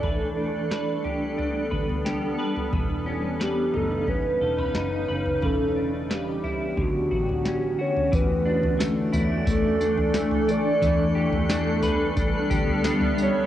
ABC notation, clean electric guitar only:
X:1
M:4/4
L:1/16
Q:1/4=89
K:Amix
V:1 name="Clean electric guitar"
[E,B]2 D2 B2 G2 D2 B2 G2 B2 | [E,B]2 C2 B2 ^D2 C2 A B D2 B2 | [E,B]2 D2 B2 E2 D,2 F2 C2 F2 | E,2 D2 A,2 E2 A,2 D2 A,2 D2 |
E,2 G2 D2 B2 D2 G2 D2 G2 |]